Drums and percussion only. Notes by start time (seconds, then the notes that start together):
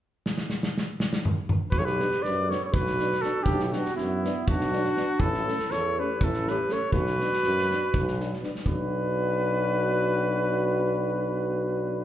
0.26 snare
0.38 snare
0.50 snare
0.63 snare
0.78 snare
1.00 snare
1.13 snare
1.25 mid tom
1.49 mid tom
1.72 kick
1.87 snare
2.00 snare
2.11 snare
2.24 snare
2.51 snare
2.74 kick
2.87 snare
2.99 snare
3.12 snare
3.23 snare
3.46 kick
3.60 snare
3.73 snare
3.85 snare
3.98 snare
4.24 snare
4.48 kick
4.60 snare
4.73 snare
4.84 snare
4.97 snare
5.20 kick
5.34 snare
5.48 snare
5.59 snare
5.71 snare
6.21 kick
6.34 snare
6.47 snare
6.69 snare
6.92 kick
7.07 snare
7.20 snare
7.33 snare
7.43 snare
7.58 snare
7.71 snare
7.94 kick
8.07 snare
8.20 snare
8.33 snare
8.43 snare
8.55 snare
8.66 kick